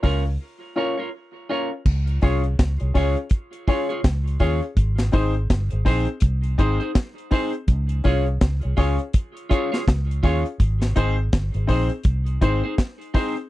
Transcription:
0.03 fingered electric bass C#2, grand piano C#4 F4 A#4 C#5, clean electric guitar F4 A#4 C#5, kick, open hi-hat
0.76 grand piano C#4 F4 A#4 C#5, clean electric guitar F4 A#4 C#5
0.97 clean electric guitar F4 A#4 C#5
1.49 grand piano C#4 F4 A#4 C#5, clean electric guitar F4 A#4 C#5
1.86 fingered electric bass C#2, kick, crash
2.07 closed hi-hat
2.21 fingered electric bass C2, grand piano C#4 F4 G#4 C#5, clean electric guitar F4 G#4 C#5, kick, open hi-hat
2.44 closed hi-hat
2.59 fingered electric bass C#2, kick, snare, closed hi-hat
2.80 fingered electric bass C2, grand piano G#4 C#5, closed hi-hat
2.94 fingered electric bass C#2, grand piano C#4 F4 G#4 C#5, clean electric guitar F4 G#4 C#5, kick, open hi-hat
3.16 closed hi-hat
3.30 kick, closed hi-hat
3.53 closed hi-hat
3.68 grand piano C#4 F4 G#4 C#5, clean electric guitar F4 G#4 C#5, kick, open hi-hat
3.89 clean electric guitar F4 G#4 C#5, closed hi-hat
4.04 fingered electric bass C#2, kick, snare, closed hi-hat
4.27 closed hi-hat
4.39 fingered electric bass D#2, grand piano C#4 F4 G#4 C#5, clean electric guitar F4 G#4 C#5, kick, open hi-hat
4.62 closed hi-hat
4.77 fingered electric bass G#1, kick, closed hi-hat
4.98 snare, closed hi-hat
5.12 fingered electric bass G#1, grand piano C4 D#4 G#4 C5, clean electric guitar D#4 G#4 C5, kick, open hi-hat
5.35 closed hi-hat
5.50 fingered electric bass G1, kick, snare, closed hi-hat
5.71 fingered electric bass G#1, grand piano G#4 C5, closed hi-hat
5.85 fingered electric bass A#1, grand piano C4 D#4 G#4 C5, clean electric guitar D#4 G#4 C5, kick, open hi-hat
6.06 closed hi-hat
6.20 fingered electric bass C2, kick, closed hi-hat
6.43 closed hi-hat
6.58 fingered electric bass G#1, grand piano C4 D#4 G#4 C5, clean electric guitar D#4 G#4 C5, kick, closed hi-hat
6.80 clean electric guitar D#4 G#4 C5, closed hi-hat
6.95 kick, snare, closed hi-hat
7.18 closed hi-hat
7.31 grand piano C4 D#4 G#4 C5, clean electric guitar D#4 G#4 C5, kick, open hi-hat
7.53 closed hi-hat
7.68 fingered electric bass C#2, kick, closed hi-hat
7.89 closed hi-hat
8.04 fingered electric bass C2, grand piano C#4 F4 G#4 C#5, clean electric guitar F4 G#4 C#5, kick, open hi-hat
8.26 closed hi-hat
8.41 fingered electric bass C#2, kick, snare, closed hi-hat
8.61 fingered electric bass C2, grand piano G#4 C#5, closed hi-hat
8.77 fingered electric bass C#2, grand piano C#4 F4 G#4 C#5, clean electric guitar F4 G#4 C#5, kick, open hi-hat
8.99 closed hi-hat
9.13 kick, closed hi-hat
9.37 closed hi-hat
9.49 grand piano C#4 F4 G#4 C#5, clean electric guitar F4 G#4 C#5, kick, closed hi-hat
9.72 clean electric guitar F4 G#4 C#5, snare, closed hi-hat
9.88 fingered electric bass C#2, kick, snare, closed hi-hat
10.11 closed hi-hat
10.23 fingered electric bass D#2, grand piano C#4 F4 G#4 C#5, clean electric guitar F4 G#4 C#5, kick, open hi-hat
10.46 closed hi-hat
10.60 fingered electric bass G#1, kick, closed hi-hat
10.81 snare, closed hi-hat
10.96 fingered electric bass G#1, grand piano C4 D#4 G#4 C5, clean electric guitar D#4 G#4 C5, kick, closed hi-hat
11.33 fingered electric bass G1, kick, snare, closed hi-hat
11.54 fingered electric bass G#1, grand piano G#4 C5, closed hi-hat
11.67 fingered electric bass A#1, grand piano C4 D#4 G#4 C5, clean electric guitar D#4 G#4 C5, kick, open hi-hat
11.89 closed hi-hat
12.03 fingered electric bass C2, kick, closed hi-hat
12.26 closed hi-hat
12.41 fingered electric bass G#1, grand piano C4 D#4 G#4 C5, clean electric guitar D#4 G#4 C5, kick, closed hi-hat
12.64 clean electric guitar D#4 G#4 C5
12.78 kick, snare, closed hi-hat
13.01 closed hi-hat
13.14 grand piano C4 D#4 G#4 C5, clean electric guitar D#4 G#4 C5, kick, open hi-hat
13.37 closed hi-hat

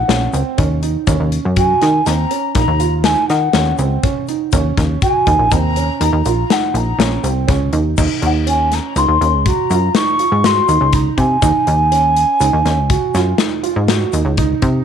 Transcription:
Already playing: flute F#5
0.08 analog synth bass A#1, grand piano C#4, snare, closed hi-hat
0.33 analog synth bass C#2, grand piano C4, closed hi-hat, shaker
0.58 analog synth bass D#2, grand piano C#4, kick, closed hi-hat
0.83 grand piano D#4, closed hi-hat, shaker
1.07 analog synth bass D#2, grand piano C#4, kick, closed hi-hat, shaker
1.20 analog synth bass D#2
1.32 closed hi-hat
1.45 analog synth bass F#2
1.56 grand piano F#4, flute G#5, kick, closed hi-hat
1.81 analog synth bass D#3, grand piano D#4, snare, closed hi-hat
2.06 analog synth bass D#2, grand piano C4, flute A#5, snare, closed hi-hat, shaker
2.31 grand piano C#4, closed hi-hat
2.55 analog synth bass A#1, grand piano D#4, flute A#5, kick, snare, closed hi-hat
2.68 analog synth bass D#2
2.80 grand piano F4, closed hi-hat, shaker
3.04 grand piano D#4, flute G#5, snare, closed hi-hat, shaker
3.28 analog synth bass D#3, flute F#5, snare, closed hi-hat, shaker
3.53 analog synth bass D#2, grand piano C#4, snare, closed hi-hat
3.78 analog synth bass C#2, grand piano C4, closed hi-hat, shaker
4.03 grand piano C#4, kick, closed hi-hat
4.27 grand piano D#4, closed hi-hat, shaker
4.52 analog synth bass D#2, grand piano C#4, kick, closed hi-hat, shaker
4.77 analog synth bass D#2, kick, snare, closed hi-hat
5.02 grand piano F#4, flute G#5, kick, closed hi-hat, shaker
5.26 analog synth bass D#2, grand piano D#4, kick, closed hi-hat, shaker
5.39 analog synth bass A#1
5.51 analog synth bass D#2, grand piano C4, flute A#5, kick, closed hi-hat, shaker
5.76 grand piano C#4, closed hi-hat, shaker
6.01 analog synth bass D#2, grand piano D#4, flute A#5, closed hi-hat
6.13 analog synth bass D#2
6.25 analog synth bass A#1, grand piano F4, closed hi-hat, shaker
6.50 grand piano D#4, flute F#5, snare, closed hi-hat
6.74 analog synth bass A#1, flute A#5, closed hi-hat, shaker
6.99 analog synth bass A#1, grand piano C#4, snare, closed hi-hat
7.23 analog synth bass C2, grand piano C4, closed hi-hat, shaker
7.48 analog synth bass C#2, grand piano C#4, kick, snare, closed hi-hat
7.72 analog synth bass D#2, grand piano D#4, closed hi-hat, shaker
7.97 analog synth bass D#2, grand piano D#4, kick, crash, shaker
8.22 analog synth bass D#2, grand piano D#4, flute F#5, closed hi-hat
8.47 grand piano C#4, flute G#5, closed hi-hat
8.72 flute A#5, snare, closed hi-hat
8.96 analog synth bass C#2, grand piano D#4, flute C6, closed hi-hat, shaker
9.08 analog synth bass D#2
9.21 analog synth bass D#2, grand piano C#4, closed hi-hat
9.33 analog synth bass C#2
9.46 grand piano F#4, flute A#5, kick, closed hi-hat
9.70 analog synth bass F#2, grand piano F4, closed hi-hat, shaker
9.95 grand piano D#4, flute C#6, snare, closed hi-hat, shaker
10.19 grand piano F4, closed hi-hat
10.32 analog synth bass G#2
10.44 grand piano F#4, flute C6, snare, closed hi-hat, shaker
10.68 analog synth bass D#2, grand piano D#4, closed hi-hat, shaker
10.81 analog synth bass C#2
10.93 grand piano D#4, flute A#5, kick, closed hi-hat
11.18 analog synth bass C3, flute G#5, kick, closed hi-hat
11.42 analog synth bass D#2, grand piano D#4, kick, closed hi-hat, shaker
11.66 analog synth bass D#2, grand piano D#4, closed hi-hat
11.92 grand piano C#4, closed hi-hat
12.16 closed hi-hat
12.40 analog synth bass C#2, grand piano D#4, closed hi-hat, shaker
12.53 analog synth bass D#2
12.65 analog synth bass D#2, grand piano C#4, snare, closed hi-hat
12.78 analog synth bass C#2
12.89 grand piano F#4, kick, closed hi-hat
13.15 analog synth bass F#2, grand piano F4, snare, closed hi-hat, shaker
13.38 grand piano D#4, snare, closed hi-hat, shaker
13.63 grand piano F4, closed hi-hat
13.76 analog synth bass G#2
13.88 grand piano F#4, snare, closed hi-hat, shaker
14.13 analog synth bass D#2, grand piano D#4, closed hi-hat, shaker
14.25 analog synth bass C#2
14.37 grand piano D#4, kick, closed hi-hat
14.62 analog synth bass C3, kick, closed hi-hat

